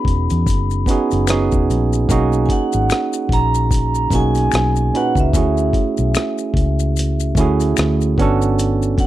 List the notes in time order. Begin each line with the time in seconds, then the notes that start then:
Already playing: B3 C#4 D#4 F#4 G#4 B5
0.05 E1, kick, closed hi-hat
0.30 E2, closed hi-hat, maracas
0.47 F#1, kick, closed hi-hat, maracas
0.71 maracas
0.86 B3 C#4 D#4 F#4, kick, closed hi-hat, maracas
0.91 G#4
1.11 F#1, closed hi-hat, maracas
1.27 B3 C#4 D#4 F#4, finger snap, cross-stick, closed hi-hat, maracas
1.31 G#4
1.52 E1, kick, maracas
1.70 A#1, closed hi-hat, maracas
1.93 maracas
2.09 B1 A#3 C#4 D#4 F#4, kick, closed hi-hat, maracas
2.13 G#4
2.33 maracas
2.46 G#5, kick
2.50 F#5, closed hi-hat
2.73 G#1, maracas
2.90 finger snap, cross-stick, closed hi-hat, maracas
3.13 maracas
3.29 A#1, kick, closed hi-hat
3.33 A#5
3.55 maracas
3.71 kick, closed hi-hat, maracas
3.95 maracas
4.10 B1 A#3 C#4 D#4 F#4, kick, closed hi-hat, maracas
4.15 G#4 G#5
4.35 closed hi-hat, maracas
4.52 B1, finger snap, cross-stick, closed hi-hat, maracas
4.76 maracas
4.93 A#2 C#4 D#4 F#4 B4 F#5, closed hi-hat
5.15 C#2, kick, maracas
5.20 E5
5.33 D2 A3 C#4 E4 F#4, kick, closed hi-hat, maracas
5.38 G#4
5.58 maracas
5.73 kick, closed hi-hat
5.97 B1, maracas
6.15 finger snap, cross-stick, closed hi-hat, maracas
6.38 maracas
6.54 C#2, kick, closed hi-hat
6.80 maracas
6.97 closed hi-hat, maracas
7.20 maracas
7.35 D2 A3 C#4 E4, kick, closed hi-hat, maracas
7.40 F#4 G#4
7.60 closed hi-hat, maracas
7.77 D2, finger snap, cross-stick, closed hi-hat, maracas
8.01 maracas
8.18 G1 B3 C#4 D4 F#4, kick, closed hi-hat
8.22 A4
8.42 maracas
8.59 closed hi-hat, maracas
8.82 maracas
8.98 F#5, kick, closed hi-hat